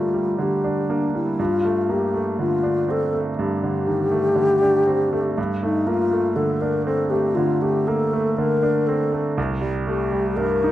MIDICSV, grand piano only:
0, 0, Header, 1, 2, 480
1, 0, Start_track
1, 0, Key_signature, -2, "minor"
1, 0, Tempo, 1000000
1, 669, Time_signature, 4, 2, 24, 8
1, 5144, End_track
2, 0, Start_track
2, 0, Title_t, "Grand piano"
2, 0, Program_c, 0, 0
2, 0, Control_c, 0, 64, 127
2, 0, Note_on_c, 0, 50, 45
2, 0, Note_on_c, 0, 55, 46
2, 0, Note_on_c, 0, 57, 40
2, 0, Note_on_c, 0, 58, 49
2, 0, Note_on_c, 0, 62, 46
2, 65, Note_off_c, 0, 57, 0
2, 67, Note_off_c, 0, 55, 0
2, 67, Note_on_c, 0, 55, 44
2, 185, Note_off_c, 0, 50, 0
2, 185, Note_on_c, 0, 50, 47
2, 258, Note_off_c, 0, 55, 0
2, 309, Note_off_c, 0, 62, 0
2, 309, Note_on_c, 0, 62, 47
2, 378, Note_off_c, 0, 50, 0
2, 431, Note_off_c, 0, 58, 0
2, 431, Note_on_c, 0, 58, 46
2, 502, Note_off_c, 0, 62, 0
2, 552, Note_on_c, 0, 55, 43
2, 623, Note_off_c, 0, 58, 0
2, 669, Note_on_c, 0, 43, 55
2, 671, Note_off_c, 0, 55, 0
2, 677, Control_c, 0, 64, 0
2, 751, Control_c, 0, 64, 127
2, 791, Note_on_c, 0, 57, 46
2, 909, Note_on_c, 0, 58, 39
2, 981, Note_off_c, 0, 57, 0
2, 1027, Note_off_c, 0, 58, 0
2, 1028, Note_on_c, 0, 57, 44
2, 1146, Note_on_c, 0, 50, 46
2, 1218, Note_off_c, 0, 57, 0
2, 1264, Note_on_c, 0, 62, 46
2, 1337, Note_off_c, 0, 50, 0
2, 1384, Note_on_c, 0, 60, 46
2, 1455, Note_off_c, 0, 62, 0
2, 1510, Note_on_c, 0, 57, 45
2, 1575, Note_off_c, 0, 60, 0
2, 1604, Note_off_c, 0, 43, 0
2, 1627, Note_on_c, 0, 43, 52
2, 1697, Note_off_c, 0, 57, 0
2, 1745, Note_on_c, 0, 50, 46
2, 1858, Note_on_c, 0, 51, 42
2, 1935, Note_off_c, 0, 50, 0
2, 1975, Note_on_c, 0, 57, 50
2, 1979, Note_off_c, 0, 51, 0
2, 2092, Note_on_c, 0, 50, 49
2, 2170, Note_off_c, 0, 57, 0
2, 2216, Note_on_c, 0, 62, 47
2, 2288, Note_off_c, 0, 50, 0
2, 2337, Note_on_c, 0, 60, 48
2, 2410, Note_off_c, 0, 62, 0
2, 2461, Note_on_c, 0, 57, 49
2, 2530, Note_off_c, 0, 60, 0
2, 2562, Note_off_c, 0, 43, 0
2, 2580, Note_off_c, 0, 57, 0
2, 2581, Note_on_c, 0, 43, 58
2, 2588, Control_c, 0, 64, 0
2, 2649, Control_c, 0, 64, 127
2, 2702, Note_on_c, 0, 57, 52
2, 2817, Note_on_c, 0, 58, 43
2, 2891, Note_off_c, 0, 57, 0
2, 2934, Note_on_c, 0, 57, 45
2, 2936, Note_off_c, 0, 58, 0
2, 3052, Note_on_c, 0, 50, 49
2, 3125, Note_off_c, 0, 57, 0
2, 3176, Note_on_c, 0, 62, 49
2, 3244, Note_off_c, 0, 50, 0
2, 3296, Note_on_c, 0, 60, 54
2, 3367, Note_off_c, 0, 62, 0
2, 3415, Note_on_c, 0, 57, 48
2, 3488, Note_off_c, 0, 60, 0
2, 3517, Note_off_c, 0, 43, 0
2, 3538, Note_on_c, 0, 50, 48
2, 3609, Note_off_c, 0, 57, 0
2, 3658, Note_on_c, 0, 57, 47
2, 3731, Note_off_c, 0, 50, 0
2, 3781, Note_on_c, 0, 58, 45
2, 3852, Note_off_c, 0, 57, 0
2, 3901, Note_off_c, 0, 58, 0
2, 3904, Note_on_c, 0, 57, 51
2, 4023, Note_on_c, 0, 50, 53
2, 4094, Note_off_c, 0, 57, 0
2, 4141, Note_on_c, 0, 62, 52
2, 4213, Note_off_c, 0, 50, 0
2, 4265, Note_on_c, 0, 60, 51
2, 4331, Note_off_c, 0, 62, 0
2, 4378, Note_on_c, 0, 57, 48
2, 4453, Note_off_c, 0, 60, 0
2, 4498, Note_off_c, 0, 57, 0
2, 4500, Note_on_c, 0, 36, 64
2, 4507, Control_c, 0, 64, 0
2, 4571, Control_c, 0, 64, 127
2, 4615, Note_on_c, 0, 55, 52
2, 4738, Note_on_c, 0, 57, 43
2, 4808, Note_off_c, 0, 55, 0
2, 4857, Note_off_c, 0, 57, 0
2, 4858, Note_on_c, 0, 55, 47
2, 4979, Note_on_c, 0, 43, 49
2, 5051, Note_off_c, 0, 55, 0
2, 5106, Note_on_c, 0, 63, 52
2, 5144, Note_off_c, 0, 36, 0
2, 5144, Note_off_c, 0, 43, 0
2, 5144, Note_off_c, 0, 63, 0
2, 5144, End_track
0, 0, End_of_file